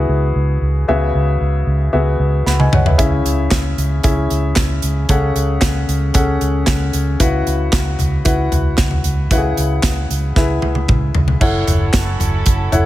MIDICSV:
0, 0, Header, 1, 5, 480
1, 0, Start_track
1, 0, Tempo, 526593
1, 804, Time_signature, 4, 2, 24, 8
1, 11719, End_track
2, 0, Start_track
2, 0, Title_t, "Grand piano"
2, 0, Program_c, 0, 0
2, 0, Control_c, 0, 64, 127
2, 0, Note_on_c, 0, 49, 65
2, 0, Note_on_c, 0, 59, 70
2, 0, Note_on_c, 0, 64, 61
2, 0, Note_on_c, 0, 66, 64
2, 0, Note_on_c, 0, 68, 76
2, 0, Note_on_c, 0, 76, 83
2, 654, Note_off_c, 0, 59, 0
2, 655, Note_off_c, 0, 64, 0
2, 655, Note_off_c, 0, 66, 0
2, 656, Note_off_c, 0, 68, 0
2, 802, Note_on_c, 0, 59, 68
2, 805, Note_off_c, 0, 49, 0
2, 805, Note_on_c, 0, 49, 62
2, 805, Note_on_c, 0, 68, 66
2, 806, Note_on_c, 0, 66, 66
2, 808, Note_off_c, 0, 76, 0
2, 808, Note_on_c, 0, 76, 79
2, 817, Control_c, 0, 64, 0
2, 958, Control_c, 0, 64, 127
2, 1488, Note_off_c, 0, 49, 0
2, 1615, Note_off_c, 0, 59, 0
2, 1617, Note_off_c, 0, 66, 0
2, 1617, Note_off_c, 0, 68, 0
2, 1618, Note_off_c, 0, 76, 0
2, 1757, Note_on_c, 0, 66, 61
2, 1758, Note_on_c, 0, 59, 68
2, 1759, Note_on_c, 0, 76, 71
2, 1760, Note_on_c, 0, 68, 60
2, 2242, Note_off_c, 0, 76, 0
2, 2244, Note_on_c, 0, 83, 58
2, 2250, Note_on_c, 0, 78, 44
2, 2359, Note_off_c, 0, 83, 0
2, 2361, Note_off_c, 0, 78, 0
2, 2364, Note_on_c, 0, 80, 57
2, 2370, Note_on_c, 0, 75, 48
2, 2478, Note_off_c, 0, 80, 0
2, 2481, Note_off_c, 0, 75, 0
2, 2492, Note_on_c, 0, 78, 57
2, 2494, Note_on_c, 0, 73, 51
2, 2573, Note_off_c, 0, 59, 0
2, 2573, Note_off_c, 0, 66, 0
2, 2574, Note_off_c, 0, 68, 0
2, 2602, Note_off_c, 0, 78, 0
2, 2603, Note_off_c, 0, 73, 0
2, 2607, Note_on_c, 0, 76, 47
2, 2614, Note_on_c, 0, 71, 44
2, 2707, Note_off_c, 0, 76, 0
2, 2716, Note_on_c, 0, 49, 61
2, 2717, Note_on_c, 0, 61, 73
2, 2718, Note_on_c, 0, 64, 70
2, 2721, Note_on_c, 0, 68, 63
2, 2721, Note_on_c, 0, 76, 82
2, 2736, Control_c, 0, 64, 0
2, 2837, Note_off_c, 0, 71, 0
2, 2920, Control_c, 0, 64, 127
2, 3404, Note_off_c, 0, 49, 0
2, 3532, Note_off_c, 0, 61, 0
2, 3533, Note_off_c, 0, 64, 0
2, 3535, Note_off_c, 0, 68, 0
2, 3535, Note_off_c, 0, 76, 0
2, 3677, Note_on_c, 0, 64, 63
2, 3678, Note_on_c, 0, 61, 68
2, 3680, Note_on_c, 0, 68, 62
2, 3683, Note_on_c, 0, 76, 80
2, 4493, Note_off_c, 0, 61, 0
2, 4493, Note_off_c, 0, 64, 0
2, 4494, Note_off_c, 0, 68, 0
2, 4496, Note_off_c, 0, 76, 0
2, 4643, Note_on_c, 0, 49, 64
2, 4643, Note_on_c, 0, 68, 66
2, 4644, Note_on_c, 0, 61, 76
2, 4644, Note_on_c, 0, 69, 65
2, 4647, Note_on_c, 0, 78, 82
2, 4653, Control_c, 0, 64, 0
2, 4804, Control_c, 0, 64, 127
2, 5327, Note_off_c, 0, 49, 0
2, 5456, Note_off_c, 0, 61, 0
2, 5456, Note_off_c, 0, 68, 0
2, 5456, Note_off_c, 0, 69, 0
2, 5458, Note_off_c, 0, 78, 0
2, 5598, Note_on_c, 0, 68, 59
2, 5599, Note_on_c, 0, 61, 74
2, 5600, Note_on_c, 0, 78, 79
2, 5601, Note_on_c, 0, 69, 65
2, 6413, Note_off_c, 0, 68, 0
2, 6414, Note_off_c, 0, 61, 0
2, 6414, Note_off_c, 0, 69, 0
2, 6414, Note_off_c, 0, 78, 0
2, 6562, Note_on_c, 0, 49, 61
2, 6562, Note_on_c, 0, 64, 74
2, 6562, Note_on_c, 0, 66, 74
2, 6563, Note_on_c, 0, 71, 70
2, 6566, Note_on_c, 0, 78, 84
2, 6575, Control_c, 0, 64, 0
2, 6742, Control_c, 0, 64, 127
2, 7246, Note_off_c, 0, 49, 0
2, 7375, Note_off_c, 0, 64, 0
2, 7375, Note_off_c, 0, 66, 0
2, 7375, Note_off_c, 0, 71, 0
2, 7377, Note_off_c, 0, 78, 0
2, 7519, Note_on_c, 0, 64, 70
2, 7519, Note_on_c, 0, 66, 64
2, 7521, Note_on_c, 0, 71, 64
2, 7522, Note_on_c, 0, 78, 76
2, 8333, Note_off_c, 0, 64, 0
2, 8334, Note_off_c, 0, 66, 0
2, 8334, Note_off_c, 0, 71, 0
2, 8335, Note_off_c, 0, 78, 0
2, 8486, Note_on_c, 0, 64, 74
2, 8490, Note_on_c, 0, 49, 65
2, 8491, Note_on_c, 0, 66, 58
2, 8491, Note_on_c, 0, 78, 84
2, 8492, Note_on_c, 0, 71, 65
2, 8495, Control_c, 0, 64, 0
2, 8545, Note_off_c, 0, 66, 0
2, 8545, Note_on_c, 0, 68, 64
2, 8672, Control_c, 0, 64, 127
2, 9170, Note_off_c, 0, 49, 0
2, 9297, Note_off_c, 0, 64, 0
2, 9299, Note_off_c, 0, 78, 0
2, 9300, Note_off_c, 0, 71, 0
2, 9327, Note_off_c, 0, 68, 0
2, 9444, Note_on_c, 0, 64, 70
2, 9448, Note_on_c, 0, 76, 74
2, 9449, Note_on_c, 0, 68, 62
2, 9450, Note_on_c, 0, 71, 63
2, 10256, Note_off_c, 0, 64, 0
2, 10258, Note_off_c, 0, 68, 0
2, 10258, Note_off_c, 0, 76, 0
2, 10259, Note_off_c, 0, 71, 0
2, 10397, Note_on_c, 0, 64, 74
2, 10400, Note_on_c, 0, 69, 70
2, 10401, Note_on_c, 0, 73, 70
2, 10402, Note_on_c, 0, 78, 83
2, 10415, Control_c, 0, 64, 0
2, 10577, Control_c, 0, 64, 127
2, 11212, Note_off_c, 0, 64, 0
2, 11214, Note_off_c, 0, 69, 0
2, 11214, Note_off_c, 0, 73, 0
2, 11215, Note_off_c, 0, 78, 0
2, 11594, Note_on_c, 0, 69, 69
2, 11595, Note_on_c, 0, 64, 75
2, 11598, Note_on_c, 0, 73, 68
2, 11600, Note_on_c, 0, 78, 80
2, 11719, Note_off_c, 0, 64, 0
2, 11719, Note_off_c, 0, 69, 0
2, 11719, Note_off_c, 0, 73, 0
2, 11719, Note_off_c, 0, 78, 0
2, 11719, End_track
3, 0, Start_track
3, 0, Title_t, "String section"
3, 0, Program_c, 1, 48
3, 10405, Note_on_c, 1, 61, 57
3, 10405, Note_on_c, 1, 64, 67
3, 10406, Note_on_c, 1, 54, 67
3, 10406, Note_on_c, 1, 69, 74
3, 11719, Note_off_c, 1, 54, 0
3, 11719, Note_off_c, 1, 61, 0
3, 11719, Note_off_c, 1, 64, 0
3, 11719, Note_off_c, 1, 69, 0
3, 11719, End_track
4, 0, Start_track
4, 0, Title_t, "Fingered electric bass"
4, 0, Program_c, 2, 33
4, 81, Note_on_c, 2, 37, 93
4, 279, Note_off_c, 2, 37, 0
4, 323, Note_on_c, 2, 37, 88
4, 520, Note_off_c, 2, 37, 0
4, 558, Note_on_c, 2, 37, 90
4, 757, Note_off_c, 2, 37, 0
4, 807, Note_on_c, 2, 37, 87
4, 1002, Note_off_c, 2, 37, 0
4, 1047, Note_on_c, 2, 37, 83
4, 1243, Note_off_c, 2, 37, 0
4, 1281, Note_on_c, 2, 37, 79
4, 1479, Note_off_c, 2, 37, 0
4, 1520, Note_on_c, 2, 37, 77
4, 1718, Note_off_c, 2, 37, 0
4, 1764, Note_on_c, 2, 37, 85
4, 1960, Note_off_c, 2, 37, 0
4, 1998, Note_on_c, 2, 37, 84
4, 2197, Note_off_c, 2, 37, 0
4, 2243, Note_on_c, 2, 37, 75
4, 2440, Note_off_c, 2, 37, 0
4, 2480, Note_on_c, 2, 37, 81
4, 2678, Note_off_c, 2, 37, 0
4, 2722, Note_on_c, 2, 37, 93
4, 2920, Note_off_c, 2, 37, 0
4, 2960, Note_on_c, 2, 37, 75
4, 3158, Note_off_c, 2, 37, 0
4, 3203, Note_on_c, 2, 37, 73
4, 3400, Note_off_c, 2, 37, 0
4, 3443, Note_on_c, 2, 37, 77
4, 3640, Note_off_c, 2, 37, 0
4, 3687, Note_on_c, 2, 37, 85
4, 3882, Note_off_c, 2, 37, 0
4, 3927, Note_on_c, 2, 37, 88
4, 4122, Note_off_c, 2, 37, 0
4, 4164, Note_on_c, 2, 37, 76
4, 4361, Note_off_c, 2, 37, 0
4, 4404, Note_on_c, 2, 37, 92
4, 4601, Note_off_c, 2, 37, 0
4, 4641, Note_on_c, 2, 37, 90
4, 4839, Note_off_c, 2, 37, 0
4, 4879, Note_on_c, 2, 37, 70
4, 5077, Note_off_c, 2, 37, 0
4, 5122, Note_on_c, 2, 37, 74
4, 5320, Note_off_c, 2, 37, 0
4, 5363, Note_on_c, 2, 37, 84
4, 5560, Note_off_c, 2, 37, 0
4, 5605, Note_on_c, 2, 37, 84
4, 5801, Note_off_c, 2, 37, 0
4, 5845, Note_on_c, 2, 37, 85
4, 6041, Note_off_c, 2, 37, 0
4, 6085, Note_on_c, 2, 37, 85
4, 6281, Note_off_c, 2, 37, 0
4, 6325, Note_on_c, 2, 37, 92
4, 6521, Note_off_c, 2, 37, 0
4, 6807, Note_on_c, 2, 37, 74
4, 7002, Note_off_c, 2, 37, 0
4, 7045, Note_on_c, 2, 37, 72
4, 7241, Note_off_c, 2, 37, 0
4, 7291, Note_on_c, 2, 37, 73
4, 7484, Note_off_c, 2, 37, 0
4, 7526, Note_on_c, 2, 37, 91
4, 7722, Note_off_c, 2, 37, 0
4, 7764, Note_on_c, 2, 37, 80
4, 7960, Note_off_c, 2, 37, 0
4, 8010, Note_on_c, 2, 37, 86
4, 8204, Note_off_c, 2, 37, 0
4, 8248, Note_on_c, 2, 37, 87
4, 8443, Note_off_c, 2, 37, 0
4, 8485, Note_on_c, 2, 37, 88
4, 8681, Note_off_c, 2, 37, 0
4, 8730, Note_on_c, 2, 37, 80
4, 8924, Note_off_c, 2, 37, 0
4, 8964, Note_on_c, 2, 37, 76
4, 9161, Note_off_c, 2, 37, 0
4, 9208, Note_on_c, 2, 37, 76
4, 9403, Note_off_c, 2, 37, 0
4, 9448, Note_on_c, 2, 37, 76
4, 9643, Note_off_c, 2, 37, 0
4, 9692, Note_on_c, 2, 37, 83
4, 9885, Note_off_c, 2, 37, 0
4, 9927, Note_on_c, 2, 37, 89
4, 10122, Note_off_c, 2, 37, 0
4, 10170, Note_on_c, 2, 37, 90
4, 10364, Note_off_c, 2, 37, 0
4, 10402, Note_on_c, 2, 30, 89
4, 10599, Note_off_c, 2, 30, 0
4, 10644, Note_on_c, 2, 30, 82
4, 10840, Note_off_c, 2, 30, 0
4, 10882, Note_on_c, 2, 30, 78
4, 11079, Note_off_c, 2, 30, 0
4, 11122, Note_on_c, 2, 30, 78
4, 11319, Note_off_c, 2, 30, 0
4, 11360, Note_on_c, 2, 30, 83
4, 11558, Note_off_c, 2, 30, 0
4, 11600, Note_on_c, 2, 30, 80
4, 11719, Note_off_c, 2, 30, 0
4, 11719, End_track
5, 0, Start_track
5, 0, Title_t, "Drums"
5, 2247, Note_on_c, 9, 38, 45
5, 2338, Note_off_c, 9, 38, 0
5, 2368, Note_on_c, 9, 48, 55
5, 2459, Note_off_c, 9, 48, 0
5, 2486, Note_on_c, 9, 45, 80
5, 2577, Note_off_c, 9, 45, 0
5, 2607, Note_on_c, 9, 43, 74
5, 2698, Note_off_c, 9, 43, 0
5, 2724, Note_on_c, 9, 36, 92
5, 2724, Note_on_c, 9, 42, 73
5, 2816, Note_off_c, 9, 36, 0
5, 2816, Note_off_c, 9, 42, 0
5, 2969, Note_on_c, 9, 42, 61
5, 3060, Note_off_c, 9, 42, 0
5, 3202, Note_on_c, 9, 38, 93
5, 3203, Note_on_c, 9, 36, 95
5, 3203, Note_on_c, 9, 39, 76
5, 3205, Note_on_c, 9, 42, 81
5, 3293, Note_off_c, 9, 38, 0
5, 3294, Note_off_c, 9, 36, 0
5, 3294, Note_off_c, 9, 39, 0
5, 3296, Note_off_c, 9, 42, 0
5, 3448, Note_on_c, 9, 42, 59
5, 3539, Note_off_c, 9, 42, 0
5, 3678, Note_on_c, 9, 42, 83
5, 3684, Note_on_c, 9, 36, 94
5, 3769, Note_off_c, 9, 42, 0
5, 3776, Note_off_c, 9, 36, 0
5, 3924, Note_on_c, 9, 42, 48
5, 4015, Note_off_c, 9, 42, 0
5, 4157, Note_on_c, 9, 38, 83
5, 4158, Note_on_c, 9, 39, 70
5, 4158, Note_on_c, 9, 42, 74
5, 4165, Note_on_c, 9, 36, 95
5, 4248, Note_off_c, 9, 38, 0
5, 4249, Note_off_c, 9, 39, 0
5, 4249, Note_off_c, 9, 42, 0
5, 4256, Note_off_c, 9, 36, 0
5, 4397, Note_on_c, 9, 42, 69
5, 4488, Note_off_c, 9, 42, 0
5, 4638, Note_on_c, 9, 42, 76
5, 4641, Note_on_c, 9, 36, 101
5, 4729, Note_off_c, 9, 42, 0
5, 4732, Note_off_c, 9, 36, 0
5, 4883, Note_on_c, 9, 42, 58
5, 4974, Note_off_c, 9, 42, 0
5, 5119, Note_on_c, 9, 38, 96
5, 5120, Note_on_c, 9, 39, 77
5, 5122, Note_on_c, 9, 36, 93
5, 5122, Note_on_c, 9, 42, 86
5, 5210, Note_off_c, 9, 38, 0
5, 5211, Note_off_c, 9, 39, 0
5, 5213, Note_off_c, 9, 36, 0
5, 5213, Note_off_c, 9, 42, 0
5, 5367, Note_on_c, 9, 42, 56
5, 5458, Note_off_c, 9, 42, 0
5, 5597, Note_on_c, 9, 42, 88
5, 5604, Note_on_c, 9, 36, 102
5, 5689, Note_off_c, 9, 42, 0
5, 5695, Note_off_c, 9, 36, 0
5, 5843, Note_on_c, 9, 42, 51
5, 5934, Note_off_c, 9, 42, 0
5, 6077, Note_on_c, 9, 38, 87
5, 6079, Note_on_c, 9, 39, 71
5, 6079, Note_on_c, 9, 42, 78
5, 6085, Note_on_c, 9, 36, 95
5, 6168, Note_off_c, 9, 38, 0
5, 6170, Note_off_c, 9, 39, 0
5, 6170, Note_off_c, 9, 42, 0
5, 6177, Note_off_c, 9, 36, 0
5, 6320, Note_on_c, 9, 42, 69
5, 6411, Note_off_c, 9, 42, 0
5, 6562, Note_on_c, 9, 42, 84
5, 6563, Note_on_c, 9, 36, 95
5, 6653, Note_off_c, 9, 42, 0
5, 6655, Note_off_c, 9, 36, 0
5, 6807, Note_on_c, 9, 42, 57
5, 6898, Note_off_c, 9, 42, 0
5, 7043, Note_on_c, 9, 38, 101
5, 7044, Note_on_c, 9, 36, 100
5, 7044, Note_on_c, 9, 39, 75
5, 7046, Note_on_c, 9, 42, 90
5, 7134, Note_off_c, 9, 38, 0
5, 7135, Note_off_c, 9, 36, 0
5, 7135, Note_off_c, 9, 39, 0
5, 7137, Note_off_c, 9, 42, 0
5, 7282, Note_on_c, 9, 43, 52
5, 7287, Note_on_c, 9, 42, 60
5, 7373, Note_off_c, 9, 43, 0
5, 7378, Note_off_c, 9, 42, 0
5, 7521, Note_on_c, 9, 42, 85
5, 7526, Note_on_c, 9, 36, 98
5, 7612, Note_off_c, 9, 42, 0
5, 7618, Note_off_c, 9, 36, 0
5, 7766, Note_on_c, 9, 43, 61
5, 7768, Note_on_c, 9, 42, 52
5, 7857, Note_off_c, 9, 43, 0
5, 7859, Note_off_c, 9, 42, 0
5, 7999, Note_on_c, 9, 38, 87
5, 8001, Note_on_c, 9, 39, 67
5, 8001, Note_on_c, 9, 42, 71
5, 8007, Note_on_c, 9, 36, 88
5, 8090, Note_off_c, 9, 38, 0
5, 8092, Note_off_c, 9, 39, 0
5, 8092, Note_off_c, 9, 42, 0
5, 8098, Note_off_c, 9, 36, 0
5, 8120, Note_on_c, 9, 43, 58
5, 8211, Note_off_c, 9, 43, 0
5, 8241, Note_on_c, 9, 42, 68
5, 8332, Note_off_c, 9, 42, 0
5, 8484, Note_on_c, 9, 42, 80
5, 8485, Note_on_c, 9, 36, 96
5, 8575, Note_off_c, 9, 42, 0
5, 8576, Note_off_c, 9, 36, 0
5, 8727, Note_on_c, 9, 42, 64
5, 8818, Note_off_c, 9, 42, 0
5, 8962, Note_on_c, 9, 38, 103
5, 8963, Note_on_c, 9, 39, 75
5, 8964, Note_on_c, 9, 36, 92
5, 8966, Note_on_c, 9, 42, 90
5, 9053, Note_off_c, 9, 38, 0
5, 9054, Note_off_c, 9, 39, 0
5, 9055, Note_off_c, 9, 36, 0
5, 9057, Note_off_c, 9, 42, 0
5, 9211, Note_on_c, 9, 42, 58
5, 9303, Note_off_c, 9, 42, 0
5, 9444, Note_on_c, 9, 38, 49
5, 9446, Note_on_c, 9, 36, 98
5, 9536, Note_off_c, 9, 38, 0
5, 9537, Note_off_c, 9, 36, 0
5, 9683, Note_on_c, 9, 48, 59
5, 9774, Note_off_c, 9, 48, 0
5, 9800, Note_on_c, 9, 48, 52
5, 9891, Note_off_c, 9, 48, 0
5, 9922, Note_on_c, 9, 47, 67
5, 9926, Note_on_c, 9, 36, 90
5, 10013, Note_off_c, 9, 47, 0
5, 10017, Note_off_c, 9, 36, 0
5, 10159, Note_on_c, 9, 43, 86
5, 10250, Note_off_c, 9, 43, 0
5, 10280, Note_on_c, 9, 43, 78
5, 10371, Note_off_c, 9, 43, 0
5, 10399, Note_on_c, 9, 49, 73
5, 10401, Note_on_c, 9, 36, 93
5, 10490, Note_off_c, 9, 49, 0
5, 10492, Note_off_c, 9, 36, 0
5, 10642, Note_on_c, 9, 43, 60
5, 10644, Note_on_c, 9, 42, 61
5, 10733, Note_off_c, 9, 43, 0
5, 10735, Note_off_c, 9, 42, 0
5, 10879, Note_on_c, 9, 38, 98
5, 10880, Note_on_c, 9, 36, 96
5, 10880, Note_on_c, 9, 39, 77
5, 10882, Note_on_c, 9, 42, 89
5, 10970, Note_off_c, 9, 38, 0
5, 10971, Note_off_c, 9, 36, 0
5, 10971, Note_off_c, 9, 39, 0
5, 10973, Note_off_c, 9, 42, 0
5, 11120, Note_on_c, 9, 43, 53
5, 11126, Note_on_c, 9, 42, 61
5, 11212, Note_off_c, 9, 43, 0
5, 11217, Note_off_c, 9, 42, 0
5, 11355, Note_on_c, 9, 42, 90
5, 11361, Note_on_c, 9, 36, 101
5, 11446, Note_off_c, 9, 42, 0
5, 11452, Note_off_c, 9, 36, 0
5, 11598, Note_on_c, 9, 43, 62
5, 11600, Note_on_c, 9, 42, 52
5, 11689, Note_off_c, 9, 43, 0
5, 11691, Note_off_c, 9, 42, 0
5, 11719, End_track
0, 0, End_of_file